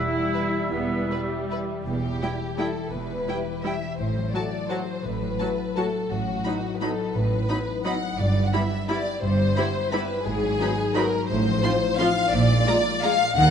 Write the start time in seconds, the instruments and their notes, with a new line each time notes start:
Already playing: harp E3 E4 G4 B4, french horn section G3 E4, clarinet G3, viola section E4, oboe E5, flute E6
0.13 harp E5
0.33 violin section E4 B4, harp B5
0.54 harp E5
0.71 double bass section E1, cello section E2, harp E3, viola section B3
0.91 harp E4
1.10 viola section G3, violin section E4 B4, harp G4
1.31 harp E5
1.49 violin section E4 B4, harp B5
1.70 harp E5
1.86 double bass section E1, cello section E2, harp E3, violin section G4
2.04 harp E4
2.21 viola section G3 E4, french horn section G3 E4, harp B4, violin section G5
2.40 harp G4
2.58 viola section G3 E4, french horn section G3 E4, violin section A4 G5, harp E5
2.75 harp G4
2.92 double bass section E1, cello section E2, harp E3, violin section B4
3.10 harp E4
3.28 viola section G3 E4, french horn section G3 E4, harp B4, violin section G5
3.46 harp G4
3.63 french horn section G3 E4, viola section G3 E4, harp E5, violin section E5 G5
3.82 harp G4
3.98 double bass section A1, cello section A2, harp A2, violin section C5
4.15 harp F#3
4.33 viola section F#3 F#4, french horn section A3 F#4, harp F#4, violin section D5 A5
4.52 harp A4
4.70 viola section F#3 F#4, french horn section A3 F#4, harp F#4, violin section C5 A5
4.88 harp A4
5.04 double bass section A1, harp A2, cello section A2, violin section B4
5.21 harp F#3
5.39 viola section F#3 F#4, french horn section A3 F#4, harp F#4, violin section A5
5.57 harp A4
5.75 viola section F#3 F#4, french horn section A3 F#4, harp F#4, violin section A4 A5
5.93 harp A4
6.10 double bass section A1, harp A2, cello section A2, violin section F#4
6.28 harp F#3
6.45 viola section F#3 D#4, french horn section B3 D#4, harp D#4, violin section B5
6.63 harp B4
6.75 violin section B4
6.81 viola section F#3 D#4, french horn section B3 D#4, harp F#4, violin section A4 B5
6.99 harp B4
7.15 double bass section A1, harp A2, cello section A2, violin section B4
7.31 harp F#3
7.49 viola section F#3 D#4, french horn section B3 D#4, harp D#4, violin section B5
7.68 harp B4
7.85 viola section F#3 D#4, french horn section B3 D#4, harp F#4, violin section F#5 B5
8.03 harp B4
8.19 double bass section G1, harp G2, cello section G2, violin section D5
8.35 harp G3
8.46 violin section F#5
8.53 viola section G3 E4, french horn section B3 E4, harp E4, violin section E5 B5
8.71 harp B4
8.88 viola section G3 E4, french horn section B3 E4, harp G4, violin section D5 B5
9.05 harp B4
9.22 double bass section G1, harp G2, cello section G2, violin section C5
9.38 harp G3
9.55 viola section G3 E4, french horn section B3 E4, harp E4, violin section B5
9.74 harp B4
9.91 viola section G3 E4, french horn section B3 E4, harp G4, violin section B4 B5
10.09 harp B4
10.25 double bass section G#1, harp G#2, cello section G#2, violin section G#4
10.42 harp F#3
10.58 viola section F#3 D#4, french horn section B3 F#4, harp D#4, violin section B5
10.78 harp B4
10.95 viola section F#3 D#4, french horn section B3 F#4, harp F#4, violin section A#4 B5
11.14 harp B4
11.29 double bass section A1, cello section A2, harp A2, violin section C5
11.47 harp F3
11.63 viola section F3 F4, french horn section C4 F4, harp D#4, violin section C6
11.83 harp C5
11.98 viola section F3 F4, french horn section C4 F4, harp F4, violin section F5 C6
12.16 harp C5
12.32 double bass section A#1, cello section A#2, harp A#2, violin section D5
12.50 harp G#3
12.67 viola section G#3 F4, french horn section G#3 F4, harp F4, violin section A#5
12.86 harp A#4
13.02 french horn section G#3 F4, viola section G#3 F4, harp G#4, violin section F5 A#5
13.20 harp A#4
13.36 double bass section D#2, harp D#3, cello section D#3, violin section F#5